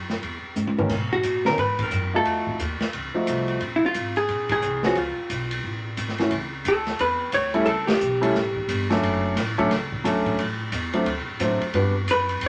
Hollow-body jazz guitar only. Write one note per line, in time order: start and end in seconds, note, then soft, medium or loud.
1.13 1.47 F#4 medium
1.46 1.58 A#4 medium
1.59 1.83 B4 medium
1.83 2.15 A#4 medium
2.16 2.58 A4 medium
3.76 3.83 E4 medium
3.86 4.16 F4 medium
4.17 4.48 G#4 loud
4.52 4.82 G#4 medium
4.86 4.97 F#4 medium
4.97 5.98 F4 medium
6.68 7.02 A4 medium
7.01 7.32 B4 medium
7.34 7.69 C#5 medium
7.66 7.86 A4 loud
7.87 8.86 G4 medium
12.11 12.44 B4 medium